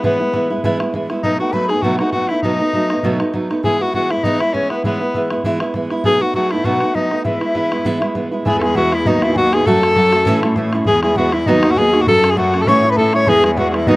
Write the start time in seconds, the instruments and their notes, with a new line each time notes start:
0.03 steel-string acoustic guitar E3 G#3 B3 E4, alto saxophone B3, flute B4, bodhran
0.20 steel-string acoustic guitar G#3 B3 E4
0.33 steel-string acoustic guitar E3 G#3 B3 E4, bodhran
0.50 steel-string acoustic guitar G#3 B3 E4
0.57 bodhran
0.64 steel-string acoustic guitar E3 G#3 B3 E4, bodhran
0.80 steel-string acoustic guitar G#3 B3 E4, bodhran
0.94 steel-string acoustic guitar E3 G#3 B3 E4, bodhran
1.02 bodhran
1.10 steel-string acoustic guitar G#3 B3 E4, bodhran
1.23 steel-string acoustic guitar B2 F#3 A3 B3 D#4, alto saxophone D#4, flute D#5, bodhran
1.39 steel-string acoustic guitar A3 B3 D#4, alto saxophone F#4, flute F#5
1.52 steel-string acoustic guitar F#3 A3 B3 D#4, alto saxophone B4, flute B5, bodhran
1.68 steel-string acoustic guitar A3 D#4, alto saxophone G#4, flute G#5, bodhran
1.72 steel-string acoustic guitar B3, bodhran
1.81 steel-string acoustic guitar B2 F#3 A3 B3 D#4, alto saxophone F#4, flute F#5, bodhran
1.98 steel-string acoustic guitar A3 D#4, alto saxophone F#4, flute F#5, bodhran
2.02 steel-string acoustic guitar B3
2.11 steel-string acoustic guitar F#3 A3 B3, alto saxophone F#4, flute F#5, bodhran
2.16 steel-string acoustic guitar D#4
2.21 bodhran
2.28 steel-string acoustic guitar A3 D#4, alto saxophone E4, flute E5, bodhran
2.33 steel-string acoustic guitar B3
2.42 steel-string acoustic guitar B2 F#3 A3 B3 D#4, alto saxophone D#4, flute D#5, bodhran
2.61 steel-string acoustic guitar A3 B3 D#4
2.73 steel-string acoustic guitar F#3 A3 B3 D#4, bodhran
2.90 steel-string acoustic guitar A3 B3 D#4, bodhran
2.97 bodhran
3.03 steel-string acoustic guitar B2 F#3 A3 B3 D#4, bodhran
3.20 steel-string acoustic guitar A3 B3 D#4, bodhran
3.33 steel-string acoustic guitar F#3 A3 B3 D#4, bodhran
3.42 bodhran
3.50 steel-string acoustic guitar A3 B3 D#4, bodhran
3.63 steel-string acoustic guitar E3 G#3 B3 E4, alto saxophone G#4, flute G#5, bodhran
3.80 steel-string acoustic guitar G#3 B3 E4, alto saxophone F#4, flute F#5
3.93 steel-string acoustic guitar E3 G#3 B3 E4, alto saxophone F#4, flute F#5, bodhran
4.10 steel-string acoustic guitar G#3 B3 E4, alto saxophone E4, flute E5, bodhran
4.17 bodhran
4.24 steel-string acoustic guitar E3 G#3 B3 E4, alto saxophone D#4, flute D#5, bodhran
4.40 steel-string acoustic guitar G#3 B3 E4, alto saxophone E4, flute E5, bodhran
4.53 steel-string acoustic guitar E3 G#3 B3 E4, alto saxophone C#4, flute C#5, bodhran
4.62 bodhran
4.70 steel-string acoustic guitar G#3 B3 E4, alto saxophone B3, flute B4, bodhran
4.84 steel-string acoustic guitar E3 G#3 B3 E4, alto saxophone B3, flute B4, bodhran
5.01 steel-string acoustic guitar G#3 B3 E4
5.14 steel-string acoustic guitar E3 G#3 B3 E4, bodhran
5.30 steel-string acoustic guitar G#3 B3 E4, bodhran
5.37 bodhran
5.44 steel-string acoustic guitar E3 G#3 B3 E4, bodhran
5.60 steel-string acoustic guitar G#3 B3 E4, bodhran
5.74 steel-string acoustic guitar E3 G#3 B3 E4, bodhran
5.82 bodhran
5.90 steel-string acoustic guitar G#3 B3 E4, bodhran
6.04 steel-string acoustic guitar B2 F#3 A3 B3 D#4, alto saxophone G#4, flute G#5, bodhran
6.21 steel-string acoustic guitar A3 B3 D#4, alto saxophone F#4, flute F#5
6.34 steel-string acoustic guitar F#3 A3 B3 D#4, alto saxophone F#4, flute F#5, bodhran
6.51 steel-string acoustic guitar A3 B3 D#4, alto saxophone E4, flute E5, bodhran
6.58 bodhran
6.64 steel-string acoustic guitar B2 F#3 A3 B3 D#4, alto saxophone F#4, flute F#5, bodhran
6.81 steel-string acoustic guitar A3 B3 D#4, bodhran
6.94 steel-string acoustic guitar F#3 A3 B3 D#4, alto saxophone D#4, flute D#5, bodhran
7.04 bodhran
7.11 steel-string acoustic guitar A3 B3 D#4, bodhran
7.24 steel-string acoustic guitar E3 G#3 B3 E4, alto saxophone E4, flute E5, bodhran
7.41 steel-string acoustic guitar G#3 B3 E4, bodhran
7.54 steel-string acoustic guitar E3 G#3 B3 E4, bodhran
7.71 steel-string acoustic guitar G#3 B3 E4, bodhran
7.79 bodhran
7.85 steel-string acoustic guitar E3 G#3 B3 E4, bodhran
8.01 steel-string acoustic guitar G#3 B3 E4, bodhran
8.15 steel-string acoustic guitar E3 G#3 B3 E4, bodhran
8.24 bodhran
8.31 steel-string acoustic guitar G#3 B3 E4
8.45 cello E2, steel-string acoustic guitar E3 G#3 B3 E4, alto saxophone G#4, flute G#5, bodhran
8.58 steel-string acoustic guitar E4, alto saxophone A4, flute G#5, bodhran
8.63 steel-string acoustic guitar G#3 B3, alto saxophone G#4
8.75 steel-string acoustic guitar E3 G#3 B3 E4, alto saxophone F#4, flute F#5, bodhran
8.92 steel-string acoustic guitar G#3 B3 E4, alto saxophone E4, flute E5, bodhran
9.05 cello D#2, steel-string acoustic guitar D#3 F#3 B3 D#4 F#4, alto saxophone D#4, flute D#5, bodhran
9.22 steel-string acoustic guitar B3 D#4 F#4, alto saxophone E4, flute E5, bodhran
9.29 bodhran
9.33 steel-string acoustic guitar F#3 B3 D#4, alto saxophone F#4, flute F#5 G#5, bodhran
9.38 steel-string acoustic guitar F#4
9.53 steel-string acoustic guitar B3 D#4 F#4, alto saxophone G#4, flute G#5, bodhran
9.60 bodhran
9.66 cello F#2, steel-string acoustic guitar F#3 A3 C#4 F#4, alto saxophone A4, flute A5, bodhran
9.82 steel-string acoustic guitar A3 F#4, bodhran
9.96 steel-string acoustic guitar F#3 A3 C#4 F#4, bodhran
10.12 steel-string acoustic guitar A3 C#4 F#4, bodhran
10.26 steel-string acoustic guitar A2 E3 A3 C#4 E4, cello A2, bodhran
10.43 steel-string acoustic guitar A3 C#4 E4, bodhran
10.50 bodhran
10.56 steel-string acoustic guitar E3 A3 C#4 E4, bodhran
10.73 steel-string acoustic guitar A3 C#4 E4, bodhran
10.79 bodhran
10.85 cello E2, steel-string acoustic guitar E3 G#3 B3 E4, alto saxophone G#4, flute G#5, bodhran
11.03 steel-string acoustic guitar G#3 B3 E4, alto saxophone G#4, flute G#5, bodhran
11.16 steel-string acoustic guitar E3 G#3 B3 E4, alto saxophone F#4, flute F#5, bodhran
11.32 steel-string acoustic guitar G#3 B3 E4, alto saxophone E4, flute E5, bodhran
11.46 cello D#2, steel-string acoustic guitar D#3 F#3 B3 D#4 F#4, alto saxophone D#4, flute D#5, bodhran
11.63 steel-string acoustic guitar B3 D#4 F#4, bodhran
11.70 alto saxophone F#4, flute F#5, bodhran
11.76 steel-string acoustic guitar F#3 B3 D#4 F#4, alto saxophone G#4, flute G#5, bodhran
11.93 steel-string acoustic guitar B3 D#4 F#4, bodhran
12.01 alto saxophone F#4, flute F#5, bodhran
12.06 cello F#2, steel-string acoustic guitar F#3 A3 C#4 F#4, alto saxophone A4, flute A5, bodhran
12.23 steel-string acoustic guitar A3 C#4 F#4, bodhran
12.29 alto saxophone G#4, flute G#5
12.36 steel-string acoustic guitar F#3 A3 C#4 F#4, alto saxophone F#4, flute F#5, bodhran
12.54 steel-string acoustic guitar A3 C#4 F#4, bodhran
12.60 alto saxophone A4, flute A5
12.67 cello A2, steel-string acoustic guitar A2 E3 A3 C#4 E4, alto saxophone C#5, flute C#6, bodhran
12.83 steel-string acoustic guitar A3 C#4 E4
12.90 alto saxophone B4, flute B5, bodhran
12.96 steel-string acoustic guitar E3 A3 C#4 E4, alto saxophone A4, flute A5, bodhran
13.13 steel-string acoustic guitar A3 C#4 E4, alto saxophone C#5, flute C#6, bodhran
13.27 cello E2, steel-string acoustic guitar E3 G#3 B3 E4, alto saxophone G#4, flute G#5, bodhran
13.43 steel-string acoustic guitar G#3 B3 E4, alto saxophone G#4, bodhran
13.57 steel-string acoustic guitar E3 G#3 B3 E4, alto saxophone F#4, flute F#5, bodhran
13.70 steel-string acoustic guitar E4, alto saxophone F#4
13.74 steel-string acoustic guitar G#3 B3, alto saxophone E4, flute E5, bodhran
13.87 cello D#2, steel-string acoustic guitar D#3 F#3 B3 D#4 F#4, alto saxophone D#4, flute D#5, bodhran